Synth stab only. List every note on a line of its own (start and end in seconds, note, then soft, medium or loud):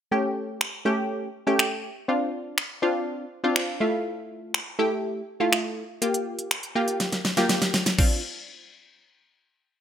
0.11 0.63 A3 medium
0.11 0.63 C#4 medium
0.11 0.63 G4 medium
0.85 1.28 A3 loud
0.85 1.28 C#4 medium
0.85 1.28 G4 loud
1.47 1.90 A3 medium
1.47 1.90 C#4 medium
1.47 1.90 G4 loud
2.08 2.60 C4 medium
2.08 2.60 D4 medium
2.08 2.60 F4 medium
2.82 3.25 C4 medium
2.82 3.25 D4 medium
2.82 3.25 F4 loud
3.44 3.81 C4 medium
3.44 3.81 D4 medium
3.44 3.80 F4 loud
3.80 4.59 A3 medium
3.80 4.59 E4 medium
3.80 4.59 F4 loud
4.79 5.22 A3 loud
4.79 5.22 E4 medium
4.79 5.22 G4 loud
5.40 5.83 A3 medium
5.40 5.83 E4 medium
5.40 5.83 F4 loud
6.02 6.53 A#3 medium
6.02 6.53 F4 medium
6.02 6.53 G4 medium
6.75 7.18 A#3 loud
6.75 7.19 F4 medium
6.75 7.19 G4 loud
7.37 7.80 A#3 medium
7.37 7.80 F4 medium
7.37 7.80 G4 loud
7.99 8.21 C4 medium
7.99 8.21 D4 medium
7.99 8.21 F4 medium